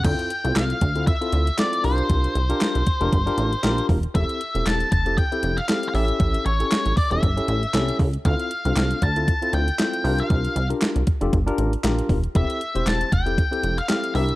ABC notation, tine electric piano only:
X:1
M:4/4
L:1/16
Q:"Swing 16ths" 1/4=117
K:Dm
V:1 name="Tine electric piano"
[CEFA]2 z [CEFA]3 z [CEFA] z [CEFA]2 z [CEFA]2 [DFGB]2- | [DFGB]2 z [DFGB]3 z [DFGB] z [DFGB]2 z [DFGB]3 z | [CEGA]2 z [CEGA]3 z [CEGA] z [CEGA]2 z [CEGA]2 [^CEGA]2- | [^CEGA]2 z [CEGA]3 z [CEGA] z [CEGA]2 z [CEGA]3 z |
[CEFA]2 z [CDFA]3 z [CEFA] z [CEFA]2 z [CEFA]2 [DFGB]2- | [DFGB]2 z [DFGB]3 z [DFGA] z [DFGB]2 z [DFGB]3 z | [CEGA]2 z [CEGc]3 z [CEGA] z [CEGA]2 z [CEGA]2 [DEGB]2 |]